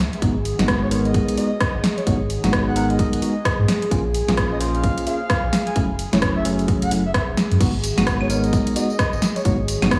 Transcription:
Already playing: analog synth pad G#4
0.13 closed hi-hat
0.22 sub bass G#1, tine electric piano G#3 B3 D#4 F#4, analog synth pad G#4, kick, closed hi-hat
0.45 open hi-hat
0.59 sub bass G#1, tine electric piano G#3 B3 D#4 F#4, snare, closed hi-hat
0.68 kick, cross-stick, closed hi-hat
0.82 soft synth lead C#5
0.91 tine electric piano G#3 B3 D#4 A#4, soft synth lead C#5, open hi-hat
1.05 soft synth lead D#5, closed hi-hat
1.14 kick, closed hi-hat
1.28 closed hi-hat
1.37 tine electric piano G#3 B3 D#4 F#4, soft synth lead D#5, open hi-hat
1.61 kick, cross-stick, closed hi-hat
1.75 sub bass G#1
1.84 snare, open hi-hat
1.98 soft synth lead C#5, closed hi-hat
2.07 sub bass G#1, tine electric piano G#3 B3 D#4 F#4, soft synth lead C#5, kick, closed hi-hat
2.30 open hi-hat
2.44 sub bass G#1, tine electric piano G#3 B3 D#4 F#4, snare, closed hi-hat
2.53 kick, cross-stick, closed hi-hat
2.67 soft synth lead F#5
2.76 tine electric piano G#3 B3 D#4 A#4, soft synth lead F#5, open hi-hat
2.90 soft synth lead D#5, closed hi-hat
2.99 kick, closed hi-hat
3.13 sub bass G#1, closed hi-hat
3.22 tine electric piano G#3 B3 D#4 F#4, open hi-hat
3.45 kick, cross-stick, closed hi-hat
3.59 sub bass G#2
3.68 snare, open hi-hat
3.82 closed hi-hat
3.91 sub bass A#1, tine electric piano A#3 C#4 F4 G#4, kick, closed hi-hat
4.14 open hi-hat
4.28 sub bass A#1, tine electric piano A#3 C#4 F4 G#4, snare, closed hi-hat
4.37 kick, cross-stick, closed hi-hat
4.52 soft synth lead D#5
4.60 tine electric piano A#3 C#4 F4 C5, soft synth lead D#5, open hi-hat
4.75 soft synth lead F5, closed hi-hat
4.84 kick, closed hi-hat
4.98 closed hi-hat
5.07 tine electric piano A#3 C#4 F4 G#4, soft synth lead F5, open hi-hat
5.30 kick, cross-stick, closed hi-hat
5.44 sub bass A#1
5.53 snare, open hi-hat
5.67 soft synth lead G#5, closed hi-hat
5.76 sub bass F#1, tine electric piano F#3 A3 C#4 E4, kick, closed hi-hat
5.99 open hi-hat
6.13 sub bass F#1, tine electric piano F#3 A3 C#4 E4, soft synth lead C#5, snare, closed hi-hat
6.22 soft synth lead C#5, kick, cross-stick, closed hi-hat
6.36 soft synth lead E5
6.45 tine electric piano F#3 A3 C#4 G#4, open hi-hat
6.59 open hi-hat
6.68 kick, closed hi-hat
6.82 sub bass F#1, soft synth lead F#5, closed hi-hat
6.91 sub bass F#1, tine electric piano F#3 A3 C#4 E4, open hi-hat
7.05 soft synth lead E5
7.14 soft synth lead E5, kick, cross-stick, closed hi-hat
7.28 sub bass E1
7.37 snare, open hi-hat
7.51 sub bass F#2, closed hi-hat
7.60 sub bass G#1, tine electric piano G#3 B3 D#4 F#4, analog synth pad G#4, kick, closed hi-hat, crash, tambourine
7.84 open hi-hat, tambourine
7.98 sub bass G#1, tine electric piano G#3 B3 D#4 F#4, snare, closed hi-hat, tambourine, claves
8.07 kick, cross-stick, closed hi-hat, tambourine
8.21 soft synth lead C#5, claves
8.30 tine electric piano G#3 B3 D#4 A#4, soft synth lead C#5, open hi-hat, tambourine
8.44 soft synth lead D#5, closed hi-hat, tambourine
8.53 kick, closed hi-hat, tambourine
8.67 closed hi-hat
8.76 tine electric piano G#3 B3 D#4 F#4, soft synth lead D#5, open hi-hat, tambourine
8.90 tambourine
8.99 kick, cross-stick, closed hi-hat, tambourine
9.13 sub bass G#1, tambourine
9.22 snare, open hi-hat, tambourine
9.36 soft synth lead C#5, closed hi-hat, tambourine
9.45 sub bass G#1, tine electric piano G#3 B3 D#4 F#4, soft synth lead C#5, kick, closed hi-hat, tambourine
9.68 open hi-hat, tambourine
9.82 sub bass G#1, tine electric piano G#3 B3 D#4 F#4, snare, closed hi-hat, tambourine, claves
9.91 kick, cross-stick, closed hi-hat, tambourine

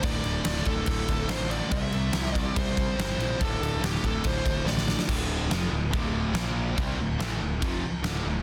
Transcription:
0.02 picked electric bass D1, overdriven electric guitar D2 A2 D3, lead electric guitar D5, kick, crash
0.24 picked electric bass D1, crash
0.45 picked electric bass D1, overdriven electric guitar D2 A2 D3, snare, crash
0.56 snare
0.65 picked electric bass D1, overdriven electric guitar D2 A2 D3, lead electric guitar A4, kick, crash
0.86 picked electric bass D1, overdriven electric guitar D2 A2 D3, kick, crash
1.08 picked electric bass D1, kick, crash
1.27 picked electric bass A1, overdriven electric guitar D2 A2 D3, lead electric guitar C5, snare, crash
1.48 overdriven electric guitar D2 A2 D3, lead electric guitar D5, crash
1.69 picked electric bass C2, overdriven electric guitar C3 G3 C4, lead electric guitar E5, kick, crash
1.73 distorted electric guitar G3 C4
1.92 picked electric bass C2, crash
2.12 picked electric bass C2, overdriven electric guitar C3 G3 C4, snare, crash
2.25 snare
2.33 overdriven electric guitar C3 G3 C4, lead electric guitar D5, kick, crash
2.54 picked electric bass C2, overdriven electric guitar C3 G3 C4, lead electric guitar C5, kick, crash
2.77 kick, crash
2.96 picked electric bass G1, overdriven electric guitar C3 G3 C4, snare, crash
3.18 picked electric bass A#1, overdriven electric guitar C3 G3 C4, crash
3.39 picked electric bass D1, overdriven electric guitar D2 A2 D3, lead electric guitar A4, kick, crash
3.60 picked electric bass D1, crash
3.81 picked electric bass D1, overdriven electric guitar D2 A2 D3, lead electric guitar G4, snare, crash
3.95 snare
4.02 picked electric bass D1, overdriven electric guitar D2 A2 D3, lead electric guitar A4, kick, crash
4.23 picked electric bass D1, overdriven electric guitar D2 A2 D3, lead electric guitar C5, kick, crash
4.46 picked electric bass D1, kick, crash
4.64 picked electric bass A1, overdriven electric guitar D2 A2 D3, lead electric guitar D5, snare
4.77 snare
4.86 overdriven electric guitar D2 A2 D3, snare
4.99 snare
5.07 picked electric bass D1, overdriven electric guitar D2 A2 D3, kick, crash
5.49 picked electric bass F1, overdriven electric guitar F2 C3 F3, snare, crash
5.70 picked electric bass D1, overdriven electric guitar D2 A2
5.91 picked electric bass D1, overdriven electric guitar D2 A2 D3, kick, crash
6.33 picked electric bass A#1, overdriven electric guitar A#2 F3 A#3, snare, crash
6.75 overdriven electric guitar C3 G3 C4, kick, crash
6.96 picked electric bass D1, overdriven electric guitar D2 A2
7.18 picked electric bass A1, overdriven electric guitar A2 E3 A3, snare, crash
7.40 picked electric bass D1, overdriven electric guitar D2 A2
7.61 picked electric bass F1, overdriven electric guitar F2 C3 F3, kick, crash
8.02 picked electric bass D1, overdriven electric guitar D2 A2 D3, snare, crash
8.24 picked electric bass D1, overdriven electric guitar D2 A2

